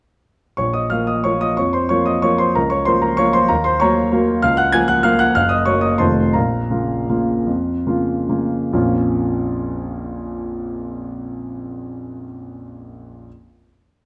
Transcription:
0.57 0.90 A#1 soft
0.57 0.73 C#5 soft
0.57 0.74 C#6 medium
0.73 0.90 D#5 soft
0.73 0.90 D#6 medium
0.90 1.21 F3 soft
0.90 1.21 A#3 soft
0.90 1.22 A#4 soft
0.90 1.07 F5 medium
0.90 1.07 F6 medium
1.07 1.23 D#5 soft
1.07 1.24 D#6 medium
1.24 1.54 F3 soft
1.24 1.54 A#3 soft
1.24 1.55 A#4 soft
1.24 1.40 C#5 medium
1.24 1.41 C#6 medium
1.41 1.57 D#5 medium
1.41 1.57 D#6 medium
1.57 1.89 F2 soft
1.57 1.73 C#5 medium
1.57 1.73 C#6 medium
1.73 1.89 C5 medium
1.73 1.89 C6 medium
1.89 2.20 F3 soft
1.89 2.20 A#3 soft
1.89 2.20 A#4 soft
1.89 2.05 C#5 medium
1.89 2.06 C#6 medium
2.06 2.22 D#5 medium
2.06 2.23 D#6 medium
2.22 2.53 F3 soft
2.22 2.53 A#3 soft
2.22 2.53 A#4 soft
2.22 2.39 C#5 medium
2.22 2.39 C#6 medium
2.38 2.54 C5 medium
2.38 2.55 C6 medium
2.55 2.86 C#2 soft
2.55 2.70 A#4 medium
2.55 2.71 A#5 medium
2.70 2.85 C#5 medium
2.70 2.86 C#6 medium
2.85 3.15 F3 soft
2.85 3.16 A#3 soft
2.85 3.01 A#4 soft
2.85 3.01 C5 medium
2.85 3.02 C6 medium
3.02 3.17 A#4 medium
3.02 3.18 A#5 medium
3.17 3.47 F3 soft
3.17 3.47 A#3 soft
3.17 3.47 A#4 soft
3.17 3.33 C#5 medium
3.17 3.34 C#6 medium
3.33 3.49 C5 medium
3.33 3.49 C6 medium
3.48 3.80 D#2 medium
3.48 3.64 A#4 medium
3.48 3.64 A#5 medium
3.64 3.80 C5 medium
3.64 3.80 C6 medium
3.80 4.10 F#3 soft
3.80 4.10 A#3 soft
3.80 4.10 A#4 soft
3.80 4.40 C#5 medium
3.80 4.40 A#5 medium
3.80 4.43 C#6 medium
4.12 4.40 F#3 soft
4.12 4.41 A#3 soft
4.12 4.41 A#4 medium
4.42 4.74 C#2 medium
4.42 4.58 F5 medium
4.42 4.59 F6 medium
4.57 4.73 F#5 medium
4.57 4.74 F#6 medium
4.72 5.02 F3 soft
4.72 5.02 A#3 soft
4.72 5.02 A#4 medium
4.72 4.89 G#5 medium
4.72 4.89 G#6 loud
4.88 5.04 F#5 medium
4.88 5.05 F#6 medium
5.03 5.33 F3 soft
5.03 5.33 A#3 soft
5.03 5.33 A#4 soft
5.03 5.19 F5 medium
5.03 5.20 F6 medium
5.19 5.35 F#5 medium
5.19 5.35 F#6 loud
5.35 5.66 F#1 medium
5.35 5.51 F5 medium
5.35 5.51 F6 loud
5.49 5.66 D#5 medium
5.49 5.66 D#6 medium
5.66 5.97 F#3 soft
5.66 5.97 A#3 soft
5.66 5.97 A#4 soft
5.66 5.82 C#5 medium
5.66 5.83 C#6 medium
5.81 5.98 D#5 medium
5.81 5.99 D#6 medium
5.98 6.33 F1 medium
5.98 6.31 D#3 soft
5.98 6.31 A3 soft
5.98 6.32 F4 soft
5.98 6.32 C5 medium
5.98 6.32 A5 medium
5.98 6.34 C6 medium
6.33 6.70 A#1 soft
6.33 8.47 A#4 soft
6.33 8.47 F5 soft
6.33 8.51 A#5 medium
6.70 7.06 C#3 soft
6.70 7.06 A#3 soft
6.70 7.06 F4 soft
7.09 7.44 C#3 soft
7.09 7.44 A#3 soft
7.09 7.44 F4 soft
7.47 7.86 F2 soft
7.87 8.25 C#3 soft
7.87 8.25 A#3 soft
7.87 8.26 F4 soft
8.29 8.69 C#3 soft
8.29 8.69 A#3 soft
8.29 8.69 F4 soft
8.73 12.23 A#1 medium
8.73 12.23 F2 soft
8.73 12.23 F3 soft
8.73 12.24 A#3 soft
8.73 12.24 C#4 soft
8.73 12.24 F4 soft

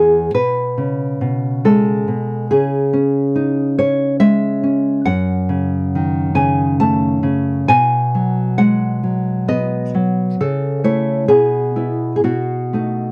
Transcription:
0.00 0.34 E2 medium
0.00 0.34 G#4 medium
0.34 1.20 B2 soft
0.34 1.60 B4 medium
0.78 2.07 C#3 soft
1.21 2.07 B2 soft
1.65 2.50 G#3 soft
1.65 2.47 A4 medium
2.08 2.50 B2 soft
2.51 5.05 C#3 medium
2.51 3.75 G#4 medium
2.93 3.78 C#4 soft
3.36 4.64 D#4 soft
3.79 4.62 C#4 soft
3.79 4.19 C#5 medium
4.20 5.05 G#3 soft
4.20 5.04 E5 medium
4.63 5.07 C#4 soft
5.05 7.66 F#2 medium
5.05 6.34 F#5 medium
5.49 6.34 C#3 soft
5.95 7.27 D#3 soft
6.35 7.22 C#3 soft
6.35 6.79 G#5 medium
6.80 7.70 A3 soft
6.80 7.66 A5 medium
7.23 7.69 C#3 soft
7.68 10.35 B2 medium
7.68 8.54 G#5 medium
8.15 9.02 F#3 soft
8.58 9.94 G#3 soft
8.58 9.45 F#5 medium
9.03 9.93 F#3 soft
9.48 10.40 B3 soft
9.48 9.92 D#5 medium
9.95 10.40 F#3 soft
10.40 11.27 C#3 medium
10.40 10.83 A4 medium
10.84 11.25 A3 soft
10.84 11.26 E4 soft
10.84 11.28 C#5 medium
11.28 12.21 B2 medium
11.28 12.12 G#4 medium
11.76 12.20 B3 soft
11.76 12.20 E4 soft
12.16 12.24 G#4 soft
12.24 13.12 B2 medium
12.24 13.12 F#4 medium
12.73 13.12 A3 soft
12.73 13.12 D#4 soft

